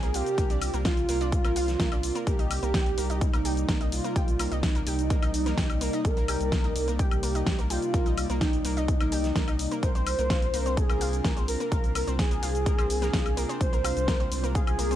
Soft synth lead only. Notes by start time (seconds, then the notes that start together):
Already playing: G#4
0.14 G4
0.85 F4
2.27 G4
3.21 D#4
3.92 F4
4.63 D#4
6.05 A#4
6.99 G4
7.70 F4
8.41 D#4
9.83 C5
10.77 G#4
11.48 A#4
12.19 G#4
13.61 C5
14.55 G#4